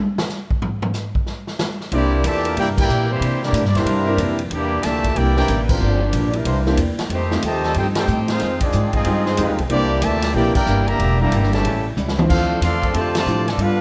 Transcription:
0.18 snare
0.29 snare, hi-hat pedal
0.51 kick
0.62 floor tom
0.82 floor tom
0.94 snare, hi-hat pedal
1.15 kick
1.26 snare
1.47 snare
1.59 snare, hi-hat pedal
1.80 snare
1.91 C2 C3 E3 G3 A#3 C4 D4 E4 G4 A#4 C5 D5, ride
1.95 E4
2.24 E2 A#2 C3 E3 A3 A#3 D4 G4 D5 E5 A5, hi-hat pedal, ride
2.45 A#3 D4 E4 A#4, ride
2.56 G2 C3 E3 A#3 D4 E4 G4 A#4 D5 G5, ride
2.78 A#3 E4 G4 A#4 D5 G5, kick, crash
2.88 A#2 C3 E3 A#3 D4, hi-hat pedal
3.10 E3 G3 A#3 C4 E4 G4 C5
3.20 C3 E3 A#3, ride
3.25 D4
3.42 G3 A#3 D4 E4 G4 D5, snare
3.53 A2 C3 E3 A#3 D4, hi-hat pedal, ride
3.63 G2, snare
3.68 D5
3.75 E2 G3 A#3 D4 E4 G4 A#4 C5 E5, snare, ride
3.85 G2 C3 E3 A#3, ride
3.89 D4
4.07 C4 D4 E4 G4 A#4
4.17 F2 C3 E3 A#3 D4, hi-hat pedal, ride
4.39 ride
4.50 E2 C3 E3 G3 A#3 D4 E4 G4 D5, ride
4.83 D2 A#2 C3 E3 A3 A#3 D4 G4 D5 E5 A5, snare, hi-hat pedal, ride
5.04 kick, ride
5.16 C2 C3 E3 A#3 D4 E4 G4 A#4 D5 G5, ride
5.36 A#3 C4 D4 E4 G4 A#4 D5 G5, snare
5.48 A1 C3 E3 A#3 D4, hi-hat pedal, ride
5.63 B4
5.69 D3 F3 G3 A#3 C4 D4 F4 G4 A#4 C5, kick, crash
5.80 G1 G2 F3 A#3 D4
6.03 F3 A#3 D4 F4 G4 D5
6.13 A#1 G2 F3 A#3 D4, hi-hat pedal, ride
6.33 G3 A#3 D4 E4 G4 A#4 E5, ride
6.45 C2 C3 E3 A#3 D4 E4 C5, ride
6.66 A#3 C4 D4 E4 G4, snare
6.77 E2 C3 E3 A#3 D4, hi-hat pedal, ride
6.98 muted upright bass stroke, snare, ride
7.09 F2 D#3 F3 A3 C4 D#4 G4, ride
7.14 A3 D#4 G4 C5
7.31 A3 C4 D#4 F4 G4, snare
7.42 D#2 C3 D#3 F3 A3 D#4 G4 D#5 A5, hi-hat pedal, ride
7.46 G4 C5
7.63 G3 D#4 F4 A4, snare
7.74 G2 F3 A3 C4 D#4 G4 A4 C5 G5, ride
7.95 G3 C4 D#4 F4 G4 A4 C5 G5, snare, ride
8.07 A2 F3 A3 D#4 G4, hi-hat pedal
8.28 D#3 G#3 C4 D#4 F4 C5, snare, ride
8.39 F2 D#3 G#3 C4 D#4 F4 C5, snare, ride
8.60 D#3 G#3 C4 D4 F4 G#4 D5, kick, ride
8.72 F2 G#2 D#3 G#3 C4, hi-hat pedal
8.93 C4 D#4 F4 G#4 D#5, kick, ride
9.05 F2 G2 D#3 G#3 C4 D#4 F4 G4, ride
9.25 G#3 D#4 F4 C5, snare
9.37 F2 D#3 G#3 C4 D#4 F4 G4, hi-hat pedal, ride
9.48 D#2
9.58 C2, ride
9.69 C2 C3 E3 G3 A#3 C4 D4 E4 G4 C5 D5, ride
10.02 D2 A#2 C3 E3 A3 A#3 D4 G4 D5 E5 A5, hi-hat pedal, ride
10.22 snare, ride
10.34 A#1 C3 E3 A#3 C4 D4 E4 G4 A#4 D5 G5
10.55 A#3 D4 E4 G4 A#4 D5 G5, muted upright bass stroke, kick, crash
10.66 G1 C3 E3 A#3 D4, hi-hat pedal
10.88 D3 G3 A#3 G4 D5 E5 A#5, ride
10.99 E1 E3 A#3 D4 G4, ride
11.20 D3 G3 A#3 D4 E4 G4 D5 E5 A#5
11.32 G1 E3 A#3 D4 G4, hi-hat pedal, ride
11.43 snare
11.53 C#3 E3 A3 G4 C#5 E5 A5, snare, ride
11.64 A1 A2 G3 C#4 E4 A4, ride
11.68 C#4 E4
11.97 C#2 A2 G3 C#4 E4, hi-hat pedal, high tom
12.08 snare
12.18 F3 C4 D4 E4 C5, mid tom
12.29 D2 D3 A3 C4 D4 F4 A4 C5 F5, kick, crash
12.61 E2 D3 A3 C4 F4 A4 D5 F5 C6, hi-hat pedal, ride
12.83 F3 C4 D4 A4, kick, ride
12.93 F2 C3 D3 F3 A3 C4 F4 A4 C5 D5 A5, ride
13.15 C3 F3 A3 F4 C5 D5 A5, snare, ride
13.26 A2 D3 F3 C4 D4 E4 F4 A4, hi-hat pedal
13.48 F3 A3 C4 D4 F4 A4 D5, snare, ride
13.58 G2 G3 B3 D4 F4 A4, ride
13.62 D4 A4 B4 F5

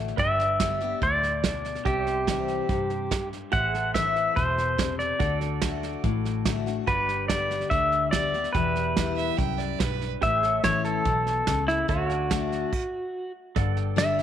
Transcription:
Already playing: A1 A2 D3 A3 D4 F#4
0.08 snare
0.17 G1 G2 B4 D5 E5 G5, kick, snare
0.40 snare
0.60 D3 G3 B3 G4, kick, snare, hi-hat pedal
0.81 B3 G4, snare
1.02 D2 A2 D5, kick, snare
1.23 snare
1.44 B2, kick, snare, hi-hat pedal
1.65 snare
1.75 snare
1.85 C2 C3 G4 D5 E5, kick, snare
2.07 snare
2.11 C5
2.27 E3 G3 C4 E4, kick, snare, hi-hat pedal
2.48 snare
2.69 G2 C3, kick, snare
2.90 snare
3.11 G2, kick, snare, hi-hat pedal
3.33 snare
3.52 A1 A2 G4 C5 E5 F#5, kick, snare
3.75 A4, snare
3.94 E3 A3 C4 E4 E5, kick, snare, hi-hat pedal
4.16 snare
4.36 E1 B2 C5, kick, snare
4.58 snare
4.78 C3, kick, snare, hi-hat pedal
4.99 D5, snare
5.19 D2 D3 F#4 A4 D5, kick, snare
5.41 snare
5.62 D3 A3 D4 F#4, kick, snare, hi-hat pedal
5.83 snare
6.04 A1 A2, kick, snare
6.25 snare
6.45 D3 A3 D4 F#4, kick, snare, hi-hat pedal
6.66 D4 F#4, snare
6.87 G1 G2 F#4 B4 D5, kick, snare
7.07 G4, snare
7.28 D3 G3 B3 G4 D5, kick, snare, hi-hat pedal
7.51 snare
7.61 snare
7.70 D2 D3 E5, kick, snare
7.92 snare
8.11 D3 G3 B3 G4 D5, kick, snare, hi-hat pedal
8.34 B3 G4, snare
8.44 snare
8.53 E1 E2 G4 B4, kick, snare
8.57 E5
8.76 snare
8.97 E3 G3 B3 E4, kick, snare, hi-hat pedal
9.16 E5, snare
9.37 C2 F#2 G5, kick, snare
9.58 D5, snare
9.79 B1 G2 B4, kick, snare, hi-hat pedal
10.01 snare
10.21 A1 A2 G4 B4 E5, kick, snare
10.43 A4, snare
10.47 C#5
10.63 A1 E3 A3 C#4 E4 C#5, kick, snare, hi-hat pedal
10.84 A4, snare
11.05 B1 B2, kick, snare
11.27 snare
11.47 C#2 C#3, kick, snare, hi-hat pedal
11.68 E4, snare
11.88 D2 D3 F#4 A4 C#5 E5, kick, snare
12.10 D5, snare
12.15 F#5
12.30 D3 A3 D4 F#4, kick, snare, hi-hat pedal
12.52 snare
12.73 kick, crash
13.56 G1 G2 A4 D5 F#5, kick, snare
13.77 G5, snare
13.96 D3 G3 D4 G4 E5, snare, hi-hat pedal
14.19 snare

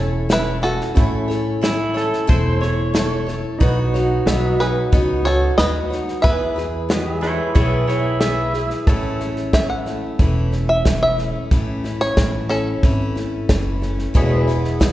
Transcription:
Already playing: E1 C#4 E4 A4 C#5 E5
0.00 E4 A4
0.29 A3 E4 A4 B4 C#5, snare, hi-hat pedal
0.62 E4 F#4 A4 C#5, snare
0.81 snare
0.95 A1 A3 C#4 E4 A4 C#5 B5, kick, snare
1.28 E4 A4 C#5, snare
1.61 A3 E4 A4 C#5, snare, hi-hat pedal
1.94 E4 A4 C#5, snare
2.13 snare
2.27 E1 A3 E4 A4 C5, kick, snare
2.61 E4 A4 C#5, snare
2.94 A3 E4 A4 C#5, snare, hi-hat pedal
3.27 E4 A4 C#5, snare
3.58 B1 B3 D#4 F#4, kick, snare
3.62 B4 C#5
3.94 D#4 F#4 C#5, snare
4.26 B1 B3 D#4 F#4 B4 C#5 E5, snare, hi-hat pedal
4.47 D#5
4.59 D#4 F#4 G#4 B4 C#5, snare
4.92 C#2 B3 D#4 F#4 C#5, kick, snare
5.25 D#4 F#4 A4 C#5, snare
5.58 D#2 B3 D#4 F#4 B4 C#5 D#5, snare, hi-hat pedal
5.90 D#4 F#4 C#5, snare
6.08 snare
6.22 E2 E3 B3 E4 G#4 B4 E5, kick, snare
6.27 B4
6.56 E4 G#4 B4, snare
6.89 B3 E4 F#4 G#4 B4, snare, hi-hat pedal
6.93 D#5
7.13 G#4 E5
7.21 E4 G#4 B4 C#5, snare
7.55 B1 E3 B3 E4 G#4 B4 C#5, kick, snare
7.87 E4 G#4 B4 C#5, snare
8.21 B3 E4 G#4 B4 E5, snare, hi-hat pedal
8.54 E4 G#4 B4, snare
8.70 snare
8.86 A1 A2 E3 A3 C#4 E4 A4 C#5 E5, kick, snare
9.20 A3 C#4 E4, snare
9.36 snare
9.53 E3 A3 C#4 E4 E5, kick, snare, hi-hat pedal
9.70 F#5
9.86 A3 C#4 E4, snare
10.19 E1 A2 E3 A3 C#4 E4, kick, snare
10.52 A3 C#4 E4, snare
10.69 E5
10.85 E3 A3 C#4 E4, kick, snare, hi-hat pedal
11.03 E5
11.18 A3 C#4 E4, snare
11.51 A1 A2 E3 A3 C#4 E4, kick, snare
11.84 A3 C#4 E4, snare
12.01 C#5, snare
12.17 A1 E3 A3 C#4 E4, kick, snare, hi-hat pedal
12.49 A3 C#4 E4 A4, snare
12.83 G#1 E3 A3 C#4 E4, kick, snare
13.16 A3 C#4 E4, snare
13.49 F#1 E3 A3 C#4 E4, kick, snare, hi-hat pedal
13.82 A3 C#4 E4, snare
13.99 snare
14.14 E1 E2 B2 E3 G#3 B3 E4 G#4 C#5, kick, snare
14.18 E5
14.42 B4
14.48 E3 G#3 B3 E4, snare
14.64 snare
14.80 E3 G#3 B3 E4, kick, snare, hi-hat pedal

